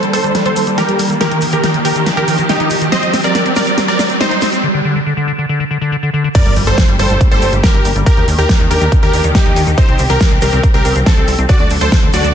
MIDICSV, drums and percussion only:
0, 0, Header, 1, 2, 480
1, 0, Start_track
1, 0, Key_signature, -2, "minor"
1, 0, Tempo, 428571
1, 1352, Time_signature, 4, 2, 24, 8
1, 13822, End_track
2, 0, Start_track
2, 0, Title_t, "Drums"
2, 31, Note_on_c, 9, 42, 48
2, 143, Note_off_c, 9, 42, 0
2, 151, Note_on_c, 9, 46, 104
2, 157, Note_on_c, 9, 82, 90
2, 263, Note_off_c, 9, 46, 0
2, 269, Note_off_c, 9, 82, 0
2, 272, Note_on_c, 9, 42, 47
2, 273, Note_on_c, 9, 82, 48
2, 384, Note_off_c, 9, 42, 0
2, 385, Note_off_c, 9, 82, 0
2, 391, Note_on_c, 9, 38, 55
2, 391, Note_on_c, 9, 42, 89
2, 393, Note_on_c, 9, 82, 37
2, 503, Note_off_c, 9, 38, 0
2, 503, Note_off_c, 9, 42, 0
2, 505, Note_off_c, 9, 82, 0
2, 511, Note_on_c, 9, 42, 51
2, 623, Note_off_c, 9, 42, 0
2, 631, Note_on_c, 9, 46, 104
2, 631, Note_on_c, 9, 82, 93
2, 743, Note_off_c, 9, 46, 0
2, 743, Note_off_c, 9, 82, 0
2, 752, Note_on_c, 9, 42, 50
2, 754, Note_on_c, 9, 82, 49
2, 864, Note_off_c, 9, 42, 0
2, 866, Note_off_c, 9, 82, 0
2, 872, Note_on_c, 9, 38, 54
2, 872, Note_on_c, 9, 42, 86
2, 872, Note_on_c, 9, 82, 37
2, 984, Note_off_c, 9, 38, 0
2, 984, Note_off_c, 9, 42, 0
2, 984, Note_off_c, 9, 82, 0
2, 993, Note_on_c, 9, 42, 50
2, 1105, Note_off_c, 9, 42, 0
2, 1110, Note_on_c, 9, 82, 88
2, 1112, Note_on_c, 9, 46, 105
2, 1222, Note_off_c, 9, 82, 0
2, 1224, Note_off_c, 9, 46, 0
2, 1233, Note_on_c, 9, 42, 47
2, 1236, Note_on_c, 9, 82, 50
2, 1345, Note_off_c, 9, 42, 0
2, 1348, Note_off_c, 9, 82, 0
2, 1352, Note_on_c, 9, 38, 57
2, 1352, Note_on_c, 9, 42, 89
2, 1354, Note_on_c, 9, 82, 40
2, 1464, Note_off_c, 9, 38, 0
2, 1464, Note_off_c, 9, 42, 0
2, 1466, Note_off_c, 9, 82, 0
2, 1473, Note_on_c, 9, 42, 52
2, 1581, Note_on_c, 9, 82, 84
2, 1585, Note_off_c, 9, 42, 0
2, 1592, Note_on_c, 9, 46, 105
2, 1693, Note_off_c, 9, 82, 0
2, 1704, Note_off_c, 9, 46, 0
2, 1711, Note_on_c, 9, 82, 54
2, 1712, Note_on_c, 9, 42, 51
2, 1823, Note_off_c, 9, 82, 0
2, 1824, Note_off_c, 9, 42, 0
2, 1832, Note_on_c, 9, 38, 61
2, 1832, Note_on_c, 9, 42, 92
2, 1834, Note_on_c, 9, 82, 37
2, 1944, Note_off_c, 9, 38, 0
2, 1944, Note_off_c, 9, 42, 0
2, 1946, Note_off_c, 9, 82, 0
2, 1952, Note_on_c, 9, 42, 52
2, 2064, Note_off_c, 9, 42, 0
2, 2072, Note_on_c, 9, 46, 102
2, 2074, Note_on_c, 9, 82, 87
2, 2184, Note_off_c, 9, 46, 0
2, 2186, Note_off_c, 9, 82, 0
2, 2186, Note_on_c, 9, 82, 50
2, 2193, Note_on_c, 9, 42, 51
2, 2298, Note_off_c, 9, 82, 0
2, 2305, Note_off_c, 9, 42, 0
2, 2313, Note_on_c, 9, 38, 67
2, 2313, Note_on_c, 9, 42, 91
2, 2321, Note_on_c, 9, 82, 35
2, 2425, Note_off_c, 9, 38, 0
2, 2425, Note_off_c, 9, 42, 0
2, 2433, Note_off_c, 9, 82, 0
2, 2433, Note_on_c, 9, 42, 54
2, 2545, Note_off_c, 9, 42, 0
2, 2551, Note_on_c, 9, 82, 91
2, 2553, Note_on_c, 9, 46, 104
2, 2663, Note_off_c, 9, 82, 0
2, 2665, Note_off_c, 9, 46, 0
2, 2673, Note_on_c, 9, 42, 52
2, 2675, Note_on_c, 9, 82, 54
2, 2785, Note_off_c, 9, 42, 0
2, 2787, Note_off_c, 9, 82, 0
2, 2792, Note_on_c, 9, 82, 40
2, 2793, Note_on_c, 9, 38, 72
2, 2793, Note_on_c, 9, 42, 91
2, 2904, Note_off_c, 9, 82, 0
2, 2905, Note_off_c, 9, 38, 0
2, 2905, Note_off_c, 9, 42, 0
2, 2913, Note_on_c, 9, 42, 54
2, 3024, Note_on_c, 9, 82, 80
2, 3025, Note_off_c, 9, 42, 0
2, 3033, Note_on_c, 9, 46, 103
2, 3136, Note_off_c, 9, 82, 0
2, 3145, Note_off_c, 9, 46, 0
2, 3146, Note_on_c, 9, 82, 50
2, 3154, Note_on_c, 9, 42, 51
2, 3258, Note_off_c, 9, 82, 0
2, 3266, Note_off_c, 9, 42, 0
2, 3273, Note_on_c, 9, 38, 74
2, 3273, Note_on_c, 9, 42, 95
2, 3274, Note_on_c, 9, 82, 41
2, 3385, Note_off_c, 9, 38, 0
2, 3385, Note_off_c, 9, 42, 0
2, 3386, Note_off_c, 9, 82, 0
2, 3393, Note_on_c, 9, 42, 54
2, 3505, Note_off_c, 9, 42, 0
2, 3512, Note_on_c, 9, 82, 85
2, 3513, Note_on_c, 9, 38, 76
2, 3513, Note_on_c, 9, 46, 103
2, 3624, Note_off_c, 9, 82, 0
2, 3625, Note_off_c, 9, 38, 0
2, 3625, Note_off_c, 9, 46, 0
2, 3633, Note_on_c, 9, 42, 55
2, 3633, Note_on_c, 9, 82, 55
2, 3745, Note_off_c, 9, 42, 0
2, 3745, Note_off_c, 9, 82, 0
2, 3748, Note_on_c, 9, 82, 36
2, 3752, Note_on_c, 9, 38, 75
2, 3752, Note_on_c, 9, 42, 97
2, 3860, Note_off_c, 9, 82, 0
2, 3864, Note_off_c, 9, 38, 0
2, 3864, Note_off_c, 9, 42, 0
2, 3872, Note_on_c, 9, 42, 53
2, 3984, Note_off_c, 9, 42, 0
2, 3985, Note_on_c, 9, 82, 89
2, 3992, Note_on_c, 9, 38, 80
2, 3992, Note_on_c, 9, 46, 102
2, 4097, Note_off_c, 9, 82, 0
2, 4104, Note_off_c, 9, 38, 0
2, 4104, Note_off_c, 9, 46, 0
2, 4109, Note_on_c, 9, 82, 50
2, 4112, Note_on_c, 9, 42, 53
2, 4221, Note_off_c, 9, 82, 0
2, 4224, Note_off_c, 9, 42, 0
2, 4229, Note_on_c, 9, 82, 39
2, 4231, Note_on_c, 9, 38, 82
2, 4231, Note_on_c, 9, 42, 99
2, 4341, Note_off_c, 9, 82, 0
2, 4343, Note_off_c, 9, 38, 0
2, 4343, Note_off_c, 9, 42, 0
2, 4351, Note_on_c, 9, 42, 57
2, 4463, Note_off_c, 9, 42, 0
2, 4471, Note_on_c, 9, 38, 84
2, 4471, Note_on_c, 9, 46, 99
2, 4478, Note_on_c, 9, 82, 82
2, 4583, Note_off_c, 9, 38, 0
2, 4583, Note_off_c, 9, 46, 0
2, 4590, Note_off_c, 9, 82, 0
2, 4590, Note_on_c, 9, 42, 55
2, 4598, Note_on_c, 9, 82, 52
2, 4702, Note_off_c, 9, 42, 0
2, 4707, Note_off_c, 9, 82, 0
2, 4707, Note_on_c, 9, 82, 39
2, 4711, Note_on_c, 9, 38, 87
2, 4711, Note_on_c, 9, 42, 94
2, 4819, Note_off_c, 9, 82, 0
2, 4823, Note_off_c, 9, 38, 0
2, 4823, Note_off_c, 9, 42, 0
2, 4832, Note_on_c, 9, 42, 54
2, 4944, Note_off_c, 9, 42, 0
2, 4944, Note_on_c, 9, 82, 92
2, 4951, Note_on_c, 9, 38, 92
2, 4951, Note_on_c, 9, 46, 99
2, 5056, Note_off_c, 9, 82, 0
2, 5063, Note_off_c, 9, 38, 0
2, 5063, Note_off_c, 9, 46, 0
2, 5071, Note_on_c, 9, 42, 54
2, 5074, Note_on_c, 9, 82, 51
2, 5183, Note_off_c, 9, 42, 0
2, 5186, Note_off_c, 9, 82, 0
2, 7109, Note_on_c, 9, 82, 42
2, 7111, Note_on_c, 9, 36, 120
2, 7111, Note_on_c, 9, 42, 95
2, 7111, Note_on_c, 9, 49, 103
2, 7221, Note_off_c, 9, 82, 0
2, 7223, Note_off_c, 9, 36, 0
2, 7223, Note_off_c, 9, 42, 0
2, 7223, Note_off_c, 9, 49, 0
2, 7232, Note_on_c, 9, 42, 55
2, 7344, Note_off_c, 9, 42, 0
2, 7352, Note_on_c, 9, 46, 104
2, 7352, Note_on_c, 9, 82, 92
2, 7464, Note_off_c, 9, 46, 0
2, 7464, Note_off_c, 9, 82, 0
2, 7468, Note_on_c, 9, 82, 53
2, 7473, Note_on_c, 9, 42, 56
2, 7580, Note_off_c, 9, 82, 0
2, 7585, Note_off_c, 9, 42, 0
2, 7587, Note_on_c, 9, 82, 38
2, 7591, Note_on_c, 9, 36, 116
2, 7593, Note_on_c, 9, 38, 122
2, 7593, Note_on_c, 9, 42, 93
2, 7699, Note_off_c, 9, 82, 0
2, 7703, Note_off_c, 9, 36, 0
2, 7705, Note_off_c, 9, 38, 0
2, 7705, Note_off_c, 9, 42, 0
2, 7713, Note_on_c, 9, 42, 54
2, 7825, Note_off_c, 9, 42, 0
2, 7829, Note_on_c, 9, 82, 87
2, 7833, Note_on_c, 9, 46, 106
2, 7941, Note_off_c, 9, 82, 0
2, 7945, Note_off_c, 9, 46, 0
2, 7949, Note_on_c, 9, 82, 49
2, 7953, Note_on_c, 9, 42, 54
2, 8061, Note_off_c, 9, 82, 0
2, 8065, Note_off_c, 9, 42, 0
2, 8069, Note_on_c, 9, 82, 40
2, 8072, Note_on_c, 9, 36, 126
2, 8073, Note_on_c, 9, 42, 99
2, 8181, Note_off_c, 9, 82, 0
2, 8184, Note_off_c, 9, 36, 0
2, 8185, Note_off_c, 9, 42, 0
2, 8193, Note_on_c, 9, 42, 58
2, 8305, Note_off_c, 9, 42, 0
2, 8309, Note_on_c, 9, 82, 86
2, 8313, Note_on_c, 9, 46, 105
2, 8421, Note_off_c, 9, 82, 0
2, 8425, Note_off_c, 9, 46, 0
2, 8428, Note_on_c, 9, 82, 53
2, 8433, Note_on_c, 9, 42, 55
2, 8540, Note_off_c, 9, 82, 0
2, 8545, Note_off_c, 9, 42, 0
2, 8551, Note_on_c, 9, 36, 124
2, 8553, Note_on_c, 9, 38, 125
2, 8553, Note_on_c, 9, 42, 98
2, 8553, Note_on_c, 9, 82, 37
2, 8663, Note_off_c, 9, 36, 0
2, 8665, Note_off_c, 9, 38, 0
2, 8665, Note_off_c, 9, 42, 0
2, 8665, Note_off_c, 9, 82, 0
2, 8674, Note_on_c, 9, 42, 55
2, 8786, Note_off_c, 9, 42, 0
2, 8791, Note_on_c, 9, 82, 93
2, 8794, Note_on_c, 9, 46, 105
2, 8903, Note_off_c, 9, 82, 0
2, 8906, Note_off_c, 9, 46, 0
2, 8909, Note_on_c, 9, 82, 49
2, 8914, Note_on_c, 9, 42, 55
2, 9021, Note_off_c, 9, 82, 0
2, 9026, Note_off_c, 9, 42, 0
2, 9032, Note_on_c, 9, 36, 126
2, 9033, Note_on_c, 9, 42, 94
2, 9033, Note_on_c, 9, 82, 45
2, 9144, Note_off_c, 9, 36, 0
2, 9145, Note_off_c, 9, 42, 0
2, 9145, Note_off_c, 9, 82, 0
2, 9154, Note_on_c, 9, 42, 53
2, 9266, Note_off_c, 9, 42, 0
2, 9273, Note_on_c, 9, 46, 112
2, 9282, Note_on_c, 9, 82, 91
2, 9385, Note_off_c, 9, 46, 0
2, 9394, Note_off_c, 9, 82, 0
2, 9394, Note_on_c, 9, 42, 53
2, 9399, Note_on_c, 9, 82, 50
2, 9506, Note_off_c, 9, 42, 0
2, 9511, Note_off_c, 9, 82, 0
2, 9511, Note_on_c, 9, 36, 120
2, 9513, Note_on_c, 9, 38, 127
2, 9513, Note_on_c, 9, 42, 94
2, 9513, Note_on_c, 9, 82, 43
2, 9623, Note_off_c, 9, 36, 0
2, 9625, Note_off_c, 9, 38, 0
2, 9625, Note_off_c, 9, 42, 0
2, 9625, Note_off_c, 9, 82, 0
2, 9633, Note_on_c, 9, 42, 53
2, 9745, Note_off_c, 9, 42, 0
2, 9753, Note_on_c, 9, 46, 108
2, 9754, Note_on_c, 9, 82, 97
2, 9865, Note_off_c, 9, 46, 0
2, 9866, Note_off_c, 9, 82, 0
2, 9871, Note_on_c, 9, 82, 52
2, 9873, Note_on_c, 9, 42, 51
2, 9983, Note_off_c, 9, 82, 0
2, 9985, Note_off_c, 9, 42, 0
2, 9991, Note_on_c, 9, 36, 127
2, 9992, Note_on_c, 9, 42, 97
2, 9992, Note_on_c, 9, 82, 40
2, 10103, Note_off_c, 9, 36, 0
2, 10104, Note_off_c, 9, 42, 0
2, 10104, Note_off_c, 9, 82, 0
2, 10112, Note_on_c, 9, 42, 56
2, 10224, Note_off_c, 9, 42, 0
2, 10231, Note_on_c, 9, 46, 113
2, 10236, Note_on_c, 9, 82, 86
2, 10343, Note_off_c, 9, 46, 0
2, 10348, Note_off_c, 9, 82, 0
2, 10349, Note_on_c, 9, 82, 60
2, 10351, Note_on_c, 9, 42, 55
2, 10461, Note_off_c, 9, 82, 0
2, 10463, Note_off_c, 9, 42, 0
2, 10471, Note_on_c, 9, 36, 127
2, 10471, Note_on_c, 9, 38, 125
2, 10471, Note_on_c, 9, 42, 92
2, 10472, Note_on_c, 9, 82, 40
2, 10583, Note_off_c, 9, 36, 0
2, 10583, Note_off_c, 9, 38, 0
2, 10583, Note_off_c, 9, 42, 0
2, 10584, Note_off_c, 9, 82, 0
2, 10592, Note_on_c, 9, 42, 55
2, 10704, Note_off_c, 9, 42, 0
2, 10711, Note_on_c, 9, 46, 109
2, 10713, Note_on_c, 9, 82, 97
2, 10823, Note_off_c, 9, 46, 0
2, 10825, Note_off_c, 9, 82, 0
2, 10832, Note_on_c, 9, 42, 52
2, 10833, Note_on_c, 9, 82, 57
2, 10944, Note_off_c, 9, 42, 0
2, 10945, Note_off_c, 9, 82, 0
2, 10949, Note_on_c, 9, 82, 43
2, 10950, Note_on_c, 9, 36, 127
2, 10951, Note_on_c, 9, 42, 91
2, 11061, Note_off_c, 9, 82, 0
2, 11062, Note_off_c, 9, 36, 0
2, 11063, Note_off_c, 9, 42, 0
2, 11072, Note_on_c, 9, 42, 52
2, 11183, Note_on_c, 9, 82, 99
2, 11184, Note_off_c, 9, 42, 0
2, 11191, Note_on_c, 9, 46, 112
2, 11295, Note_off_c, 9, 82, 0
2, 11303, Note_off_c, 9, 46, 0
2, 11311, Note_on_c, 9, 82, 50
2, 11312, Note_on_c, 9, 42, 50
2, 11422, Note_off_c, 9, 82, 0
2, 11422, Note_on_c, 9, 82, 39
2, 11424, Note_off_c, 9, 42, 0
2, 11431, Note_on_c, 9, 36, 124
2, 11432, Note_on_c, 9, 38, 124
2, 11432, Note_on_c, 9, 42, 90
2, 11534, Note_off_c, 9, 82, 0
2, 11543, Note_off_c, 9, 36, 0
2, 11544, Note_off_c, 9, 38, 0
2, 11544, Note_off_c, 9, 42, 0
2, 11553, Note_on_c, 9, 42, 51
2, 11665, Note_off_c, 9, 42, 0
2, 11666, Note_on_c, 9, 82, 99
2, 11672, Note_on_c, 9, 46, 111
2, 11778, Note_off_c, 9, 82, 0
2, 11784, Note_off_c, 9, 46, 0
2, 11788, Note_on_c, 9, 82, 57
2, 11792, Note_on_c, 9, 42, 50
2, 11900, Note_off_c, 9, 82, 0
2, 11904, Note_off_c, 9, 42, 0
2, 11908, Note_on_c, 9, 82, 41
2, 11911, Note_on_c, 9, 36, 127
2, 11911, Note_on_c, 9, 42, 92
2, 12020, Note_off_c, 9, 82, 0
2, 12023, Note_off_c, 9, 36, 0
2, 12023, Note_off_c, 9, 42, 0
2, 12032, Note_on_c, 9, 42, 53
2, 12144, Note_off_c, 9, 42, 0
2, 12153, Note_on_c, 9, 46, 114
2, 12158, Note_on_c, 9, 82, 90
2, 12265, Note_off_c, 9, 46, 0
2, 12270, Note_off_c, 9, 82, 0
2, 12271, Note_on_c, 9, 82, 61
2, 12272, Note_on_c, 9, 42, 52
2, 12383, Note_off_c, 9, 82, 0
2, 12384, Note_off_c, 9, 42, 0
2, 12391, Note_on_c, 9, 36, 127
2, 12393, Note_on_c, 9, 38, 122
2, 12393, Note_on_c, 9, 42, 89
2, 12394, Note_on_c, 9, 82, 41
2, 12503, Note_off_c, 9, 36, 0
2, 12505, Note_off_c, 9, 38, 0
2, 12505, Note_off_c, 9, 42, 0
2, 12506, Note_off_c, 9, 82, 0
2, 12513, Note_on_c, 9, 42, 54
2, 12625, Note_off_c, 9, 42, 0
2, 12629, Note_on_c, 9, 82, 98
2, 12632, Note_on_c, 9, 46, 110
2, 12741, Note_off_c, 9, 82, 0
2, 12744, Note_off_c, 9, 46, 0
2, 12749, Note_on_c, 9, 82, 57
2, 12752, Note_on_c, 9, 42, 50
2, 12861, Note_off_c, 9, 82, 0
2, 12864, Note_off_c, 9, 42, 0
2, 12872, Note_on_c, 9, 36, 125
2, 12873, Note_on_c, 9, 42, 89
2, 12873, Note_on_c, 9, 82, 40
2, 12984, Note_off_c, 9, 36, 0
2, 12985, Note_off_c, 9, 42, 0
2, 12985, Note_off_c, 9, 82, 0
2, 12993, Note_on_c, 9, 42, 48
2, 13104, Note_on_c, 9, 82, 93
2, 13105, Note_off_c, 9, 42, 0
2, 13112, Note_on_c, 9, 46, 111
2, 13216, Note_off_c, 9, 82, 0
2, 13224, Note_off_c, 9, 46, 0
2, 13231, Note_on_c, 9, 82, 58
2, 13232, Note_on_c, 9, 42, 50
2, 13343, Note_off_c, 9, 82, 0
2, 13344, Note_off_c, 9, 42, 0
2, 13346, Note_on_c, 9, 82, 38
2, 13352, Note_on_c, 9, 36, 125
2, 13352, Note_on_c, 9, 38, 121
2, 13352, Note_on_c, 9, 42, 88
2, 13458, Note_off_c, 9, 82, 0
2, 13464, Note_off_c, 9, 36, 0
2, 13464, Note_off_c, 9, 38, 0
2, 13464, Note_off_c, 9, 42, 0
2, 13472, Note_on_c, 9, 42, 52
2, 13584, Note_off_c, 9, 42, 0
2, 13590, Note_on_c, 9, 82, 96
2, 13592, Note_on_c, 9, 46, 110
2, 13702, Note_off_c, 9, 82, 0
2, 13704, Note_off_c, 9, 46, 0
2, 13710, Note_on_c, 9, 82, 56
2, 13713, Note_on_c, 9, 42, 49
2, 13822, Note_off_c, 9, 42, 0
2, 13822, Note_off_c, 9, 82, 0
2, 13822, End_track
0, 0, End_of_file